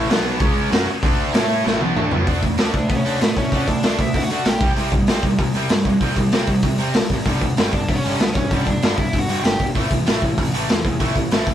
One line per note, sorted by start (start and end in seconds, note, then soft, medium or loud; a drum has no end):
0.00 0.10 A3 loud
0.09 0.38 B1 loud
0.09 0.41 B2 medium
0.09 0.41 F#3 loud
0.09 0.42 B3 loud
0.09 snare loud
0.09 open hi-hat medium
0.40 0.70 C#2 loud
0.40 0.72 C#3 loud
0.40 0.72 G#3 loud
0.40 0.72 C#4 loud
0.40 kick loud
0.40 open hi-hat medium
0.72 0.86 F#2 medium
0.72 0.88 F#3 loud
0.72 0.88 C#4 loud
0.72 0.88 F#4 loud
0.72 snare loud
0.72 open hi-hat medium
0.87 muted picked electric bass stroke soft
0.87 muted overdriven electric guitar stroke medium
0.87 muted distorted electric guitar stroke medium
1.03 1.32 D2 loud
1.03 1.34 D3 loud
1.03 1.34 A3 loud
1.03 1.35 D4 loud
1.03 kick loud
1.03 open hi-hat medium
1.34 1.63 A2 loud
1.34 1.65 A3 loud
1.34 1.66 E4 loud
1.34 1.66 A4 loud
1.34 snare loud
1.34 open hi-hat medium
1.65 1.80 A1 loud
1.65 1.80 A2 loud
1.65 1.81 E3 medium
1.65 1.81 A3 loud
1.65 snare medium
1.81 1.95 B1 medium
1.81 1.96 B2 medium
1.81 1.96 F#3 loud
1.81 1.96 B3 loud
1.81 high tom medium
1.96 2.11 D2 medium
1.96 2.12 D3 loud
1.96 2.12 A3 loud
1.96 2.12 D4 loud
1.96 mid tom loud
2.11 2.27 B1 medium
2.11 2.27 B2 medium
2.11 2.27 F#3 loud
2.11 2.28 B3 medium
2.11 floor tom medium
2.27 2.38 D2 loud
2.27 2.42 D3 medium
2.27 2.42 A3 loud
2.27 2.43 D4 medium
2.27 kick loud
2.27 open hi-hat medium
2.42 2.53 A1 medium
2.42 2.57 D3 medium
2.42 2.58 A3 medium
2.42 kick medium
2.42 open hi-hat medium
2.58 2.69 D2 medium
2.58 2.73 D3 loud
2.58 2.73 A3 loud
2.58 2.74 D4 loud
2.58 snare loud
2.58 open hi-hat medium
2.74 2.85 D2 medium
2.74 2.88 D3 medium
2.74 2.88 A3 medium
2.74 2.89 D4 medium
2.74 2.89 D5 medium
2.74 kick medium
2.74 open hi-hat medium
2.89 3.00 D2 loud
2.89 3.04 D3 medium
2.89 3.04 A3 medium
2.89 2.97 B3 medium
2.89 2.96 B4 medium
2.89 kick loud
2.89 open hi-hat medium
2.96 3.18 C#4 medium
2.96 3.21 C#5 medium
3.06 3.16 D2 medium
3.06 3.19 D3 medium
3.06 3.20 A3 loud
3.06 3.21 D4 loud
3.06 open hi-hat medium
3.20 3.32 A2 medium
3.20 3.35 D3 medium
3.20 3.35 A3 medium
3.20 3.36 B3 medium
3.20 3.37 B4 medium
3.20 snare loud
3.20 open hi-hat medium
3.37 3.48 A2 medium
3.37 3.51 D3 medium
3.37 3.51 A3 medium
3.37 3.66 C#4 medium
3.37 3.68 C#5 medium
3.37 kick medium
3.37 open hi-hat medium
3.52 3.63 D2 medium
3.52 3.66 D3 medium
3.52 3.67 A3 loud
3.52 3.67 D4 loud
3.52 kick medium
3.52 open hi-hat medium
3.67 3.78 D2 medium
3.67 3.81 D3 medium
3.67 3.82 A3 medium
3.67 3.97 D4 medium
3.67 4.00 D5 loud
3.67 kick medium
3.67 open hi-hat medium
3.83 3.94 D2 medium
3.83 3.98 D3 medium
3.83 3.98 A3 loud
3.83 3.98 D4 loud
3.83 snare loud
3.83 open hi-hat medium
3.98 4.09 D2 loud
3.98 4.13 D3 medium
3.98 4.14 A3 medium
3.98 4.21 E4 medium
3.98 4.22 E5 medium
3.98 kick medium
3.98 open hi-hat medium
4.14 4.25 D2 medium
4.14 4.29 D3 medium
4.14 4.29 A3 medium
4.14 kick medium
4.14 open hi-hat medium
4.23 4.44 F#4 medium
4.23 4.47 F#5 loud
4.29 4.41 D3 medium
4.29 4.45 D3 loud
4.29 4.45 A3 loud
4.29 4.46 D4 loud
4.29 open hi-hat medium
4.45 4.56 B1 medium
4.45 4.60 D3 medium
4.45 4.60 A3 loud
4.45 4.69 G4 medium
4.45 snare loud
4.45 open hi-hat medium
4.49 4.69 G5 loud
4.60 4.71 C2 medium
4.60 4.76 C3 medium
4.60 4.76 G3 medium
4.60 4.77 C4 loud
4.60 kick loud
4.60 open hi-hat medium
4.76 4.88 C2 medium
4.76 4.92 C3 loud
4.76 4.92 G3 loud
4.76 4.92 C4 loud
4.76 open hi-hat medium
4.92 5.03 G1 medium
4.92 5.07 C3 medium
4.92 5.07 G3 medium
4.92 kick medium
4.92 open hi-hat medium
5.07 5.19 C2 medium
5.07 5.23 C3 medium
5.07 5.23 G3 loud
5.07 5.24 C4 loud
5.07 snare loud
5.07 open hi-hat medium
5.23 5.33 C2 medium
5.23 5.38 C3 medium
5.23 5.39 G3 medium
5.23 kick medium
5.23 open hi-hat medium
5.39 5.50 C2 medium
5.39 5.54 C3 medium
5.39 5.54 G3 medium
5.39 kick loud
5.39 open hi-hat medium
5.54 5.65 C2 medium
5.54 5.69 C3 medium
5.54 5.70 G3 loud
5.54 5.71 C4 loud
5.54 open hi-hat medium
5.69 5.81 G2 medium
5.69 5.84 C3 medium
5.69 5.85 G3 medium
5.69 snare loud
5.69 open hi-hat medium
5.85 5.96 G2 medium
5.85 6.00 C3 medium
5.85 6.01 G3 medium
5.85 kick medium
5.85 open hi-hat medium
6.00 6.11 C2 medium
6.00 6.16 C3 loud
6.00 6.17 G3 medium
6.00 6.17 C4 loud
6.00 kick medium
6.00 open hi-hat medium
6.16 6.28 C2 medium
6.16 6.32 C3 medium
6.16 6.32 G3 medium
6.16 kick medium
6.16 open hi-hat medium
6.32 6.44 C2 medium
6.32 6.47 C3 medium
6.32 6.48 G3 loud
6.32 6.48 C4 loud
6.32 snare loud
6.32 open hi-hat medium
6.47 6.59 C2 medium
6.47 6.63 C3 medium
6.47 6.63 G3 medium
6.47 kick medium
6.47 open hi-hat medium
6.62 6.74 C2 medium
6.62 6.79 C3 medium
6.62 6.79 G3 medium
6.62 kick loud
6.62 open hi-hat medium
6.78 6.90 C3 medium
6.78 6.95 C3 medium
6.78 6.95 G3 medium
6.78 open hi-hat medium
6.82 6.95 C4 loud
6.94 7.05 C2 medium
6.94 7.10 C3 medium
6.94 7.10 G3 medium
6.94 snare loud
6.94 open hi-hat medium
7.09 7.21 A1 medium
7.09 7.25 C3 medium
7.09 7.25 G3 medium
7.09 kick medium
7.09 open hi-hat medium
7.25 7.36 G1 loud
7.25 7.41 G2 medium
7.25 7.42 D3 loud
7.25 7.42 G3 loud
7.25 kick medium
7.25 open hi-hat medium
7.41 7.52 D2 medium
7.41 7.56 G2 medium
7.41 7.57 D3 medium
7.41 kick medium
7.41 open hi-hat medium
7.57 7.68 G1 medium
7.57 7.72 G2 medium
7.57 7.73 D3 loud
7.57 7.73 G3 loud
7.57 snare loud
7.57 open hi-hat medium
7.73 7.83 G1 medium
7.73 7.88 G2 medium
7.73 7.88 D3 medium
7.73 7.89 D4 medium
7.73 7.89 D5 medium
7.73 kick medium
7.73 open hi-hat medium
7.89 7.99 G1 loud
7.89 8.03 G2 medium
7.89 8.04 D3 medium
7.89 7.97 B3 medium
7.89 7.95 B4 medium
7.89 kick loud
7.89 open hi-hat medium
7.95 8.19 C#4 medium
7.95 8.20 C#5 medium
8.04 8.15 G1 medium
8.04 8.19 G2 medium
8.04 8.20 D3 medium
8.04 8.20 G3 loud
8.04 open hi-hat medium
8.20 8.31 D2 medium
8.20 8.35 G2 medium
8.20 8.35 D3 medium
8.20 8.36 B3 medium
8.20 8.34 B4 medium
8.20 snare loud
8.20 open hi-hat medium
8.34 8.46 D2 medium
8.34 8.50 G2 medium
8.34 8.50 D3 medium
8.34 8.65 C#4 medium
8.34 8.64 C#5 medium
8.34 kick medium
8.34 open hi-hat medium
8.51 8.61 G1 medium
8.51 8.66 G2 medium
8.51 8.66 D3 loud
8.51 8.67 G3 loud
8.51 kick medium
8.51 open hi-hat medium
8.65 8.77 G1 medium
8.65 8.81 G2 medium
8.65 8.81 D3 medium
8.65 8.96 D4 medium
8.65 8.98 D5 medium
8.65 kick medium
8.65 open hi-hat medium
8.82 8.93 G1 medium
8.82 8.97 G2 medium
8.82 8.98 D3 loud
8.82 8.98 G3 loud
8.82 snare loud
8.82 open hi-hat medium
8.96 9.08 G1 medium
8.96 9.12 G2 medium
8.96 9.12 D3 medium
8.96 9.20 E4 medium
8.96 9.19 E5 medium
8.96 kick medium
8.96 open hi-hat medium
9.13 9.24 G1 loud
9.13 9.28 G2 medium
9.13 9.28 D3 medium
9.13 kick loud
9.13 open hi-hat medium
9.19 9.43 F#4 medium
9.19 9.42 F#5 loud
9.28 9.39 G2 medium
9.28 9.44 G2 medium
9.28 9.44 D3 loud
9.28 9.44 G3 loud
9.28 open hi-hat medium
9.43 9.54 G1 medium
9.43 9.59 G2 medium
9.43 9.59 D3 medium
9.43 9.66 G4 medium
9.43 9.65 G5 loud
9.43 snare loud
9.43 open hi-hat medium
9.60 9.70 G1 medium
9.60 9.75 G2 medium
9.60 9.75 D3 medium
9.60 kick medium
9.60 open hi-hat medium
9.75 9.86 A1 medium
9.75 9.90 A2 medium
9.75 9.91 E3 loud
9.75 9.91 A3 loud
9.75 kick medium
9.75 open hi-hat medium
9.91 10.02 E1 medium
9.91 10.05 A2 medium
9.91 10.06 E3 medium
9.91 kick medium
9.91 open hi-hat medium
10.06 10.17 A1 medium
10.06 10.21 A2 medium
10.06 10.22 E3 loud
10.06 10.22 A3 loud
10.06 snare loud
10.06 open hi-hat medium
10.22 10.33 A1 medium
10.22 10.37 A2 medium
10.22 10.37 E3 medium
10.22 kick medium
10.22 open hi-hat medium
10.38 10.49 A1 medium
10.38 10.52 A2 medium
10.38 10.52 E3 medium
10.38 kick loud
10.38 open hi-hat medium
10.54 10.65 A1 medium
10.54 10.68 A2 loud
10.54 10.69 E3 loud
10.54 10.69 A3 loud
10.54 open hi-hat medium
10.69 10.80 E2 medium
10.69 10.83 A2 medium
10.69 10.84 E3 medium
10.69 snare loud
10.69 open hi-hat medium
10.84 10.95 E2 medium
10.84 10.99 A2 medium
10.84 10.99 E3 medium
10.84 kick medium
10.84 open hi-hat medium
11.00 11.11 A1 medium
11.00 11.15 A2 loud
11.00 11.15 E3 loud
11.00 11.15 A3 loud
11.00 kick medium
11.00 open hi-hat medium
11.15 11.26 A1 medium
11.15 11.30 A2 medium
11.15 11.30 E3 medium
11.15 kick medium
11.15 open hi-hat medium
11.31 11.43 A1 medium
11.31 11.45 A2 medium
11.31 11.46 E3 loud
11.31 11.46 A3 loud
11.31 snare loud
11.31 open hi-hat medium
11.46 11.54 A1 medium
11.46 11.54 A2 medium
11.46 11.54 E3 medium
11.46 kick medium
11.46 open hi-hat medium